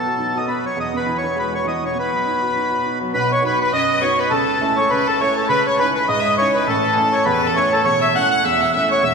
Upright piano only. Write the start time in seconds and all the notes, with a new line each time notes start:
Already playing: B2
0.06 F#4
0.17 D#4
0.35 F#4
0.47 B3
0.64 F#3
0.76 E2
0.94 B2
1.06 E3
1.23 B3
1.36 G#3
1.53 B3
1.65 E3
1.83 B2
1.95 B2
2.13 F#3
2.25 D#4
2.42 F#4
2.54 D#4
2.70 F#4
2.84 D#4
3.01 F#3
3.14 B1 B2
3.42 B3 D#4 F#4
3.72 F#2
4.02 B3 D#4 F#4
4.31 C#2 C#3
4.60 A3 C#4 E4
4.91 C#3
5.20 A3 C#4 E4
5.49 C#2 C#3
5.79 C#4 D#4 E4
6.09 G#2
6.39 C#4 D#4 E4
6.67 A1 A2
6.97 A3 C#4 E4
7.26 E2
7.55 A3 C#4 E4
7.86 E1 E2
8.15 A3 C#4 E4
8.44 E2
8.73 A3 C#4 E4
9.03 E1 E2